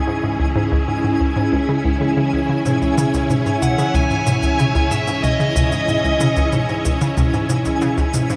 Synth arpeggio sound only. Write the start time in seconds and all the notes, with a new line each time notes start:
0.08 G#2
0.24 G#2
0.40 C#2
0.56 G#2
0.72 C#2
0.88 G#2
1.04 G#2
1.20 C#2
1.36 G#2
1.53 C#2
1.69 C#3
1.85 C#2
2.01 C#3
2.17 C#3
2.33 C#2
2.49 C#3
2.66 G#2
2.82 C#2
2.98 C#3
3.14 C#2
3.30 G#2
3.46 G#2
3.62 C#2
3.78 C#3
3.94 C#2
4.11 G#2
4.27 G#2
4.43 C#2
4.59 C#3
4.75 C#2
4.91 G#2
5.07 G#2
5.23 C#2
5.40 C#3
5.56 C#2
5.72 G#2
5.88 G#2
6.04 C#2
6.21 C#3
6.37 C#2
6.53 G#2
6.69 G#2
6.85 C#2
7.01 C#3
7.17 C#2
7.34 G#2
7.50 G#2
7.66 C#2
7.82 C#3
7.98 C#2
8.14 G#2
8.30 G#2